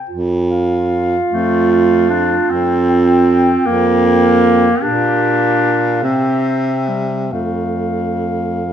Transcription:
0.09 F2 F4
0.51 F5
1.32 F2 A3
1.71 F5
2.10 D4
2.49 F2 C4 G5
2.90 G5
3.65 F2 A#3 A#4
4.06 G5
4.82 A#2 D4 G4 F5
6.02 C3 C4 G4 E5
6.88 G3
7.31 F2 A3 A4 F5

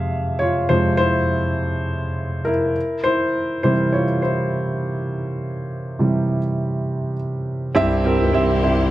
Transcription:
Already playing: F2 C3 G#3 G#4 E5 F5
0.39 F4 C#5
0.69 F2 C3 G#3 F4 C5
0.97 E4 C5
2.45 E4 A#4
3.04 E4 C5
3.63 C3 E3 G3 E4 C5
3.93 F4 C#5
4.22 E4 C5
5.99 C3 E3 G3
7.75 C2 G2 C3 C4 E4 G4 E5
8.04 C4 E4 G4 A#4
8.20 C#2
8.33 C2 C4 E4 G4 E5
8.62 C4 E4 G4 E5

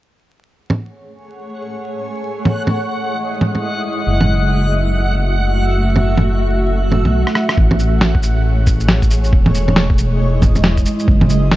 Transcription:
0.56 A3 G#4 C#5 F#5
0.70 low bongo
2.32 G#3 E4 D#5
2.45 low bongo
2.67 low bongo
3.41 low bongo
3.55 low bongo
4.07 F#1 A3 F#4 E5
4.21 low bongo
5.17 F#1
5.82 F#1
5.96 low bongo
6.17 low bongo
6.48 F#1
6.69 F#1
6.92 low bongo
7.05 B1, low bongo
7.27 cross-stick
7.35 cross-stick
7.49 cross-stick
7.57 A1 A3 G#4 C#5, kick
7.71 low bongo
7.79 shaker
8.01 snare
8.15 kick
8.23 shaker
8.67 A1, kick, shaker
8.80 shaker
8.89 snare
9.02 kick, shaker
9.11 shaker
9.24 shaker
9.32 E1 G#3 E4 D#5, kick
9.46 low bongo
9.55 shaker
9.68 low bongo
9.76 snare
9.90 kick
9.98 E1, shaker
10.20 E1
10.42 kick, low bongo, shaker
10.55 low bongo, shaker
10.64 snare
10.77 kick, shaker
10.86 shaker
10.99 shaker
11.08 F#1 A3 F#4 E5, kick
11.21 low bongo
11.30 shaker
11.51 snare

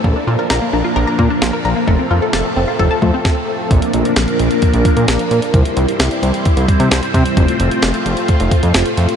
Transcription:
0.04 A#1 F3 A#3 D4 A#4, kick
0.16 D4
0.27 A#2 F4
0.39 A#4
0.50 A#1 A#5, snare
0.62 A#3
0.73 A#1 D4
0.85 F4
0.96 A#1 A#4
1.07 A#5
1.19 A#2 A#3, kick
1.30 D4
1.42 A#1 F4, snare
1.53 A#4
1.65 A#1 A#5
1.76 A#3
1.88 F1 A3 C4 A4, kick
1.99 C4
2.11 F2 F4
2.22 A4
2.33 F1 A5, snare
2.45 A3
2.56 F1 C4
2.68 F4
2.79 F1 A4, kick
2.91 A5
3.02 F2 A3, kick
3.14 C4
3.25 kick, snare
3.71 A#1 F3 A#3 D4 A#4, kick, closed hi-hat
3.82 closed hi-hat
3.93 A#1, closed hi-hat
4.05 closed hi-hat
4.16 A#1, snare, closed hi-hat
4.28 closed hi-hat
4.39 A#1, closed hi-hat
4.51 closed hi-hat
4.62 kick, closed hi-hat
4.74 A#1, closed hi-hat
4.85 kick, closed hi-hat
4.97 A#2, closed hi-hat
5.08 A#1, snare, closed hi-hat
5.19 closed hi-hat
5.31 A#2, closed hi-hat
5.42 closed hi-hat
5.54 C2 G3 C4 E4 C5, kick, closed hi-hat
5.65 closed hi-hat
5.77 C2, closed hi-hat
5.88 closed hi-hat
6.00 C2, snare, closed hi-hat
6.11 closed hi-hat
6.22 C2, closed hi-hat
6.34 closed hi-hat
6.45 kick, closed hi-hat
6.57 C2, closed hi-hat
6.68 kick, closed hi-hat
6.80 C3, closed hi-hat
6.91 C2, snare, closed hi-hat
7.03 closed hi-hat
7.14 C3, kick, closed hi-hat
7.26 closed hi-hat
7.37 F1 A3 F4, kick, closed hi-hat
7.48 closed hi-hat
7.60 F1, closed hi-hat
7.71 closed hi-hat
7.82 F1, snare, closed hi-hat
7.94 closed hi-hat
8.06 F1, closed hi-hat
8.17 closed hi-hat
8.28 kick, closed hi-hat
8.40 F1, closed hi-hat
8.51 kick, closed hi-hat
8.63 F2, closed hi-hat
8.74 F1, snare, closed hi-hat
8.86 closed hi-hat
8.97 F2, closed hi-hat
9.09 closed hi-hat

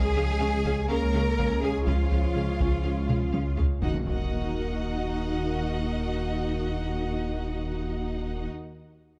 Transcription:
Already playing: C#2 G#3 C#4 G#4 C#5 G#5
0.16 C#2 F3 C#4 G#4 F5
0.41 C#2 C#3 G#3 C#4 G#4 F5
0.64 C#2 C#3 C#4 G#4 F5, taiko
0.88 C#2 A#3 C#4 G#4 A#4 F5 A#5
1.12 C#3 G#3 C#4 G#4 F5
1.37 C#2 C#3 C#4 G#4 F5, taiko
1.62 C#2 G#3 C#4 G#4 F5 G#5, taiko mid
1.87 C#2 C#3 F3 C#4 F4 G#4 F5, taiko
2.11 C#2 F3 C#4 G#4 F5
2.35 C#2 C#3 G#3 C#4 G#4 F5
2.59 C#2 C#3 C#4 G#4 F5, taiko
2.83 C#2 C#4 G#4 F5
3.08 C#3 G#3 C#4 G#4 F5, taiko mid
3.32 C#2 C#3 C#4 G#4 F5, taiko high
3.57 C#2 C#4 G#4 F5, taiko low
3.81 D#1 D#2 A#3 D#4 F#4 A#4 D#5 F#5, taiko, impact
4.06 D#1 D#2 D#4 F#4 D#5 F#5, taiko

